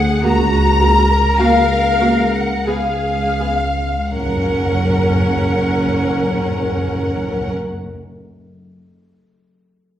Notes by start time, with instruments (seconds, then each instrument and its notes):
Already playing: double bass section D2, tuba D2, cello section G#4, violin section F#5, flute section F#5
0.23 double bass section C#2, tuba C#2, timpani C#3, viola section A#3 F#4, cello section F#4, violin section A#5, flute section A#5
0.80 viola section A#3 F#4, cello section A#4
1.39 double bass section C#2, tuba C#2, viola section A#3 F#4, violin section F5, flute section F5
2.00 viola section A#3 F#4
2.34 violin section F#5, flute section F#5
2.67 double bass section C#2, tuba C#2, viola section B3 G#4, cello section G#4, violin section F5, flute section F5
3.40 viola section B3 G#4
4.12 double bass section F#1, tuba F#1, timpani F#2, cello section F#2, viola section C#4 A#4, violin section A#4 F#5, flute section F#5
4.19 timpani F#2
4.25 timpani F#2
4.32 timpani F#2
4.38 timpani F#2
4.44 timpani F#2
4.51 timpani F#2
4.58 timpani F#2
4.64 timpani F#2
4.71 timpani F#2
4.77 timpani F#2
4.83 timpani F#2
4.89 timpani F#2
4.96 timpani F#2
5.02 timpani F#2
5.09 timpani F#2
5.15 timpani F#2
5.21 timpani F#2
5.28 timpani F#2
5.35 timpani F#2
5.42 timpani F#2
5.48 timpani F#2
5.54 timpani F#2
5.60 timpani F#2
5.67 timpani F#2
5.74 timpani F#2
5.80 timpani F#2
5.87 timpani F#2
5.93 timpani F#2
6.00 timpani F#2
6.06 timpani F#2
6.13 timpani F#2
6.19 timpani F#2
6.25 timpani F#2
6.32 timpani F#2
6.38 timpani F#2
6.45 timpani F#2
6.51 timpani F#2
6.57 timpani F#2
6.63 timpani F#2
6.70 timpani F#2
6.76 timpani F#2
6.83 timpani F#2
6.89 timpani F#2
6.96 timpani F#2
7.02 timpani F#2
7.08 timpani F#2
7.15 timpani F#2
7.22 timpani F#2
7.28 timpani F#2
7.34 timpani F#2
7.41 timpani F#2
7.48 timpani F#2